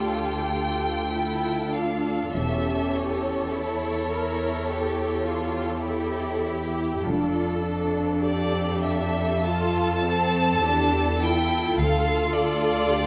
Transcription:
0.00 2.31 D2 soft
0.00 1.14 F4 soft
0.00 1.13 G4 soft
0.00 1.09 A4 soft
0.00 1.74 G5 medium
1.13 1.74 E4 soft
1.13 2.32 F4 soft
1.13 5.81 A4 soft
1.72 2.33 D4 soft
1.72 2.35 F5 soft
2.34 3.51 E1 soft
2.34 7.02 E2 soft
2.34 3.54 C#4 soft
2.34 3.55 G4 soft
2.34 2.94 E5 soft
2.96 6.47 C#5 medium
3.53 4.10 E4 soft
3.53 4.12 A4 soft
4.11 4.67 E4 soft
4.11 4.68 A#4 soft
4.69 5.27 G4 soft
4.69 5.26 A4 soft
5.25 5.85 F4 soft
5.25 5.86 G4 soft
5.84 7.03 E4 soft
5.84 6.45 G4 soft
5.84 6.47 A4 soft
6.46 7.04 G4 soft
6.46 7.06 G4 soft
7.06 8.19 F1 soft
7.06 10.60 F2 medium
7.06 7.63 D4 soft
7.06 7.64 F4 soft
7.06 8.21 A4 soft
7.64 9.44 D4 soft
7.64 8.22 A4 soft
8.22 9.47 G4 medium
8.22 13.07 A4 soft
8.22 8.81 D5 medium
8.85 9.47 E5 medium
9.45 10.04 F4 soft
9.45 10.07 F4 soft
9.45 11.22 A5 medium
10.05 10.63 C4 medium
10.05 10.65 A4 soft
10.63 11.77 E2 soft
10.63 11.21 D4 medium
10.63 11.22 G4 soft
11.20 11.78 E4 soft
11.20 11.78 F4 soft
11.20 11.79 G5 medium
11.79 13.07 D2 medium
11.79 12.88 D2 soft
11.79 13.07 F4 medium
11.79 12.92 A4 medium
11.79 12.35 F5 medium
12.36 13.07 D5 medium
12.92 13.07 G4 medium

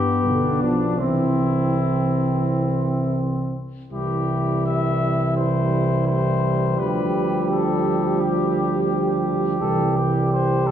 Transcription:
0.00 0.26 G2 soft
0.00 0.94 B3 soft
0.00 0.63 G4 medium
0.25 1.00 B1 soft
0.25 0.63 D3 soft
0.25 1.00 D4 soft
0.61 1.00 F3 soft
0.61 0.98 D4 soft
0.98 3.60 C2 soft
0.98 3.60 E3 soft
0.98 3.56 C4 soft
0.98 3.60 C4 soft
0.98 3.15 E4 soft
3.92 6.75 C2 soft
3.92 6.80 E3 soft
3.92 9.57 G3 soft
3.92 6.75 E4 soft
3.92 4.62 G4 medium
4.66 5.35 E5 medium
5.36 6.06 C5 medium
6.07 6.81 C5 medium
6.79 9.57 D2 soft
6.79 9.62 F3 soft
6.79 10.71 G4 soft
6.79 7.50 B4 medium
7.51 8.22 A4 soft
8.21 9.26 G4 soft
9.60 10.71 C2 soft
9.60 10.71 E3 soft
9.60 10.71 G3 soft
9.60 9.98 A4 medium
9.96 10.31 G4 soft
10.32 10.68 C5 medium
10.67 10.71 A4 medium

